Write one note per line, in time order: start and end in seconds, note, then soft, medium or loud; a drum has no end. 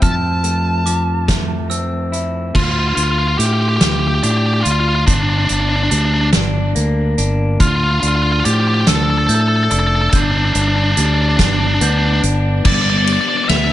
0.00 2.51 F2 medium
0.00 0.85 F3 medium
0.00 0.43 A3 medium
0.00 1.29 C4 soft
0.00 1.71 E4 medium
0.00 1.67 A5 medium
0.00 0.87 F6 medium
0.00 kick medium
0.00 closed hi-hat medium
0.44 1.27 A3 medium
0.44 closed hi-hat soft
0.86 2.54 F3 medium
0.86 1.71 D6 medium
0.86 closed hi-hat soft
1.28 2.55 A3 medium
1.28 kick medium
1.28 snare loud
1.28 closed hi-hat medium
1.70 2.55 C4 medium
1.70 2.55 E6 medium
1.70 closed hi-hat medium
2.12 2.55 E4 medium
2.12 closed hi-hat soft
2.54 2.94 D2 medium
2.54 4.65 D3 medium
2.54 2.63 F4 medium
2.54 kick medium
2.54 crash medium
2.64 2.71 F4 medium
2.71 2.79 F4 medium
2.79 2.87 F4 medium
2.88 2.95 F4 medium
2.96 3.35 D2 medium
2.96 3.03 F4 medium
2.96 3.80 F4 medium
2.96 closed hi-hat medium
3.04 3.11 F4 medium
3.11 3.18 F4 soft
3.19 3.27 F4 medium
3.28 3.36 F4 soft
3.38 3.77 A2 medium
3.38 5.08 A3 soft
3.38 3.45 G4 medium
3.38 closed hi-hat medium
3.46 3.53 G4 medium
3.53 3.60 G4 medium
3.61 3.68 G4 medium
3.69 3.76 G4 medium
3.77 3.83 G4 medium
3.81 4.20 D2 medium
3.81 4.63 F4 medium
3.81 3.91 G4 medium
3.81 snare loud
3.81 closed hi-hat medium
3.92 3.99 G4 medium
3.99 4.07 G4 medium
4.07 4.14 G4 medium
4.15 4.22 G4 medium
4.23 4.62 A2 medium
4.23 5.49 D4 medium
4.23 4.31 G4 medium
4.23 closed hi-hat medium
4.31 4.37 G4 medium
4.37 4.45 G4 medium
4.46 4.53 G4 medium
4.54 4.61 G4 medium
4.61 4.71 F4 medium
4.61 5.07 F4 medium
4.61 4.63 G4 medium
4.65 5.04 D2 medium
4.65 closed hi-hat medium
4.72 4.80 F4 medium
4.80 4.88 F4 medium
4.89 4.95 F4 medium
4.95 5.03 F4 medium
5.07 5.46 G1 medium
5.07 7.18 G2 medium
5.07 5.13 D4 medium
5.07 kick medium
5.07 closed hi-hat medium
5.14 5.21 D4 soft
5.23 5.29 D4 medium
5.29 5.37 D4 soft
5.38 5.45 D4 medium
5.45 5.52 D4 medium
5.45 6.33 D4 soft
5.45 closed hi-hat medium
5.50 5.88 G1 medium
5.50 5.60 D4 medium
5.61 5.68 D4 soft
5.69 5.76 D4 medium
5.76 5.83 D4 medium
5.83 5.90 D4 medium
5.91 6.30 D2 medium
5.91 7.60 G3 soft
5.91 5.98 D4 soft
5.91 closed hi-hat medium
5.98 6.05 D4 medium
6.05 6.13 D4 soft
6.14 6.21 D4 medium
6.21 6.29 D4 soft
6.33 6.73 G1 medium
6.33 7.17 D4 medium
6.33 snare loud
6.33 closed hi-hat medium
6.75 7.14 D2 medium
6.75 7.60 A#3 medium
6.75 closed hi-hat medium
7.18 7.56 G1 medium
7.18 8.02 D4 medium
7.18 closed hi-hat medium
7.60 7.98 D2 medium
7.60 9.71 D3 medium
7.60 7.67 F4 medium
7.60 8.45 F6 medium
7.60 kick medium
7.60 closed hi-hat medium
7.68 7.76 F4 medium
7.76 7.84 F4 medium
7.84 7.91 F4 medium
7.91 7.99 F4 medium
8.00 8.41 D2 medium
8.00 8.86 D4 medium
8.00 8.07 F4 medium
8.00 closed hi-hat medium
8.08 8.15 F4 medium
8.16 8.22 F4 medium
8.22 8.30 F4 medium
8.32 8.39 F4 medium
8.40 8.45 F4 medium
8.44 8.83 A2 medium
8.44 10.13 F3 medium
8.44 8.52 G4 medium
8.44 9.29 A6 medium
8.44 closed hi-hat medium
8.54 8.60 G4 medium
8.60 8.67 G4 medium
8.68 8.74 G4 medium
8.74 8.81 G4 medium
8.81 8.88 G4 medium
8.87 9.26 D2 medium
8.87 9.69 D4 medium
8.87 8.95 A4 medium
8.87 snare loud
8.87 closed hi-hat medium
8.95 9.03 A4 medium
9.03 9.10 A4 medium
9.10 9.18 A4 medium
9.18 9.26 A4 medium
9.27 9.67 A2 medium
9.27 10.13 A3 soft
9.27 9.34 A4 medium
9.27 10.12 G6 medium
9.27 closed hi-hat medium
9.34 9.40 A4 medium
9.41 9.48 A4 medium
9.48 9.56 A4 medium
9.56 9.63 A4 medium
9.63 9.71 A4 medium
9.70 10.09 F1 medium
9.70 10.54 D4 medium
9.70 9.79 A4 medium
9.70 closed hi-hat medium
9.79 9.87 A4 medium
9.87 9.95 A4 medium
9.95 10.01 A4 medium
10.01 10.09 A4 medium
10.10 10.51 G1 medium
10.10 12.23 G2 medium
10.10 10.18 A4 medium
10.10 10.98 G6 medium
10.10 kick medium
10.10 closed hi-hat medium
10.15 10.22 D4 medium
10.23 10.30 D4 soft
10.31 10.37 D4 medium
10.37 10.45 D4 medium
10.45 10.53 D4 medium
10.53 10.93 G1 medium
10.53 10.61 D4 soft
10.53 11.37 D4 medium
10.53 closed hi-hat medium
10.62 10.68 D4 medium
10.68 10.76 D4 medium
10.76 10.83 D4 medium
10.84 10.91 D4 medium
10.91 10.99 D4 medium
10.97 11.35 D2 medium
10.97 12.66 G3 medium
10.97 11.05 D4 medium
10.97 11.82 A6 medium
10.97 closed hi-hat medium
11.06 11.13 D4 medium
11.14 11.21 D4 medium
11.22 11.28 D4 medium
11.29 11.36 D4 medium
11.37 11.78 G1 medium
11.37 11.44 D4 medium
11.37 12.21 D4 medium
11.37 kick medium
11.37 snare loud
11.37 closed hi-hat medium
11.45 11.52 D4 medium
11.53 11.59 D4 medium
11.60 11.67 D4 medium
11.67 11.74 D4 medium
11.74 11.82 D4 medium
11.81 12.19 D2 medium
11.81 12.65 B3 medium
11.81 11.90 D4 medium
11.81 12.66 G6 medium
11.81 closed hi-hat medium
11.90 11.98 D4 soft
11.98 12.06 D4 medium
12.06 12.13 D4 soft
12.13 12.21 D4 medium
12.22 12.65 G1 medium
12.22 12.65 D4 medium
12.22 closed hi-hat medium
12.64 13.16 G1 medium
12.64 13.73 G2 medium
12.64 12.71 B3 medium
12.64 12.73 D4 medium
12.64 12.74 D5 medium
12.64 13.50 D6 medium
12.64 kick loud
12.64 snare soft
12.64 crash medium
12.72 12.79 B3 soft
12.72 12.81 D4 soft
12.72 12.81 D5 medium
12.80 12.88 B3 soft
12.80 12.88 D4 medium
12.80 12.89 D5 medium
12.88 12.95 B3 soft
12.88 12.96 D4 medium
12.88 12.97 D5 medium
12.95 13.02 B3 soft
12.95 13.04 D4 medium
12.95 13.04 D5 medium
13.03 13.73 G3 soft
13.03 13.10 B3 soft
13.03 13.12 D4 medium
13.03 13.12 D5 medium
13.07 ride medium
13.12 13.18 B3 medium
13.12 13.19 D4 medium
13.12 13.20 D5 medium
13.19 13.26 B3 soft
13.19 13.25 D4 medium
13.19 13.29 D5 medium
13.26 13.33 B3 medium
13.26 13.33 D4 medium
13.26 13.37 D5 medium
13.33 13.41 B3 soft
13.33 13.42 D4 medium
13.33 13.44 D5 medium
13.41 13.49 B3 medium
13.41 13.49 D4 medium
13.41 13.48 D5 medium
13.49 13.73 D2 medium
13.49 13.73 B3 medium
13.49 13.56 B3 medium
13.49 13.57 D4 medium
13.49 13.56 E5 medium
13.49 13.73 F7 medium
13.49 snare medium
13.49 ride medium
13.56 13.64 B3 medium
13.56 13.65 D4 medium
13.56 13.64 E5 medium
13.64 13.71 B3 medium
13.64 13.73 D4 medium
13.64 13.71 E5 medium